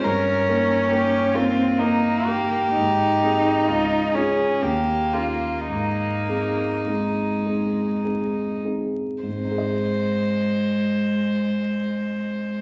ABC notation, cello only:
X:1
M:3/4
L:1/8
Q:1/4=53
K:Ab
V:1 name="Cello"
D3 C B,2 | E3 D B,2 | B,2 A,3 z | A,6 |]